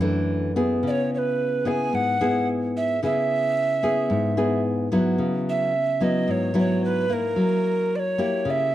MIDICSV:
0, 0, Header, 1, 3, 480
1, 0, Start_track
1, 0, Tempo, 545653
1, 728, Time_signature, 4, 2, 24, 8
1, 7695, End_track
2, 0, Start_track
2, 0, Title_t, "Recorder"
2, 0, Program_c, 0, 74
2, 768, Note_on_c, 0, 74, 78
2, 797, Note_on_c, 0, 73, 85
2, 805, Note_off_c, 0, 74, 0
2, 973, Note_off_c, 0, 73, 0
2, 1006, Note_on_c, 0, 73, 76
2, 1041, Note_on_c, 0, 71, 83
2, 1049, Note_off_c, 0, 73, 0
2, 1476, Note_on_c, 0, 80, 95
2, 1489, Note_off_c, 0, 71, 0
2, 1714, Note_on_c, 0, 78, 87
2, 1728, Note_off_c, 0, 80, 0
2, 2181, Note_off_c, 0, 78, 0
2, 2435, Note_on_c, 0, 76, 95
2, 2646, Note_off_c, 0, 76, 0
2, 2677, Note_on_c, 0, 76, 104
2, 4067, Note_off_c, 0, 76, 0
2, 4832, Note_on_c, 0, 76, 84
2, 5308, Note_on_c, 0, 75, 73
2, 5321, Note_off_c, 0, 76, 0
2, 5550, Note_on_c, 0, 73, 77
2, 5563, Note_off_c, 0, 75, 0
2, 5779, Note_off_c, 0, 73, 0
2, 5794, Note_on_c, 0, 73, 76
2, 6005, Note_off_c, 0, 73, 0
2, 6023, Note_on_c, 0, 71, 77
2, 6272, Note_on_c, 0, 70, 85
2, 6286, Note_off_c, 0, 71, 0
2, 6999, Note_on_c, 0, 74, 81
2, 7012, Note_off_c, 0, 70, 0
2, 7032, Note_on_c, 0, 73, 88
2, 7041, Note_off_c, 0, 74, 0
2, 7479, Note_on_c, 0, 76, 95
2, 7492, Note_off_c, 0, 73, 0
2, 7695, Note_off_c, 0, 76, 0
2, 7695, End_track
3, 0, Start_track
3, 0, Title_t, "Nylon-string guitar"
3, 0, Program_c, 1, 24
3, 0, Note_on_c, 1, 42, 67
3, 4, Note_on_c, 1, 52, 64
3, 9, Note_on_c, 1, 57, 55
3, 17, Note_on_c, 1, 62, 64
3, 448, Note_off_c, 1, 52, 0
3, 450, Note_off_c, 1, 57, 0
3, 454, Note_off_c, 1, 62, 0
3, 492, Note_on_c, 1, 59, 57
3, 496, Note_on_c, 1, 64, 58
3, 499, Note_on_c, 1, 68, 61
3, 706, Note_off_c, 1, 42, 0
3, 729, Note_on_c, 1, 49, 61
3, 1412, Note_off_c, 1, 59, 0
3, 1414, Note_off_c, 1, 64, 0
3, 1414, Note_off_c, 1, 68, 0
3, 1453, Note_on_c, 1, 59, 56
3, 1461, Note_on_c, 1, 64, 48
3, 1469, Note_on_c, 1, 68, 56
3, 1665, Note_off_c, 1, 49, 0
3, 1695, Note_on_c, 1, 44, 61
3, 1892, Note_off_c, 1, 59, 0
3, 1896, Note_off_c, 1, 64, 0
3, 1898, Note_off_c, 1, 68, 0
3, 1940, Note_on_c, 1, 59, 61
3, 1946, Note_on_c, 1, 64, 60
3, 1946, Note_on_c, 1, 68, 65
3, 2616, Note_off_c, 1, 59, 0
3, 2617, Note_off_c, 1, 64, 0
3, 2619, Note_off_c, 1, 68, 0
3, 2628, Note_off_c, 1, 44, 0
3, 2661, Note_on_c, 1, 59, 47
3, 2663, Note_on_c, 1, 49, 62
3, 2666, Note_on_c, 1, 64, 48
3, 2672, Note_on_c, 1, 68, 52
3, 3335, Note_off_c, 1, 59, 0
3, 3339, Note_off_c, 1, 64, 0
3, 3340, Note_off_c, 1, 68, 0
3, 3367, Note_on_c, 1, 59, 52
3, 3370, Note_on_c, 1, 64, 50
3, 3374, Note_on_c, 1, 68, 57
3, 3591, Note_off_c, 1, 49, 0
3, 3604, Note_on_c, 1, 44, 62
3, 3809, Note_off_c, 1, 59, 0
3, 3811, Note_off_c, 1, 64, 0
3, 3811, Note_off_c, 1, 68, 0
3, 3845, Note_on_c, 1, 59, 54
3, 3848, Note_on_c, 1, 64, 53
3, 3851, Note_on_c, 1, 68, 62
3, 4288, Note_off_c, 1, 59, 0
3, 4288, Note_off_c, 1, 64, 0
3, 4291, Note_off_c, 1, 68, 0
3, 4325, Note_on_c, 1, 54, 51
3, 4328, Note_on_c, 1, 59, 51
3, 4334, Note_on_c, 1, 64, 60
3, 4542, Note_off_c, 1, 44, 0
3, 4560, Note_on_c, 1, 49, 60
3, 5028, Note_off_c, 1, 54, 0
3, 5028, Note_off_c, 1, 59, 0
3, 5029, Note_off_c, 1, 64, 0
3, 5283, Note_on_c, 1, 54, 49
3, 5289, Note_on_c, 1, 59, 53
3, 5293, Note_on_c, 1, 64, 60
3, 5500, Note_off_c, 1, 49, 0
3, 5521, Note_on_c, 1, 44, 61
3, 5727, Note_off_c, 1, 54, 0
3, 5730, Note_off_c, 1, 59, 0
3, 5732, Note_off_c, 1, 64, 0
3, 5752, Note_on_c, 1, 54, 60
3, 5757, Note_on_c, 1, 59, 58
3, 5764, Note_on_c, 1, 64, 62
3, 6201, Note_off_c, 1, 54, 0
3, 6203, Note_off_c, 1, 59, 0
3, 6207, Note_off_c, 1, 64, 0
3, 6242, Note_on_c, 1, 58, 50
3, 6248, Note_on_c, 1, 64, 54
3, 6460, Note_off_c, 1, 44, 0
3, 6476, Note_on_c, 1, 54, 59
3, 7166, Note_off_c, 1, 58, 0
3, 7169, Note_off_c, 1, 64, 0
3, 7198, Note_on_c, 1, 58, 49
3, 7202, Note_on_c, 1, 64, 52
3, 7206, Note_on_c, 1, 67, 54
3, 7418, Note_off_c, 1, 54, 0
3, 7435, Note_on_c, 1, 49, 60
3, 7644, Note_off_c, 1, 58, 0
3, 7647, Note_off_c, 1, 64, 0
3, 7648, Note_off_c, 1, 67, 0
3, 7695, Note_off_c, 1, 49, 0
3, 7695, End_track
0, 0, End_of_file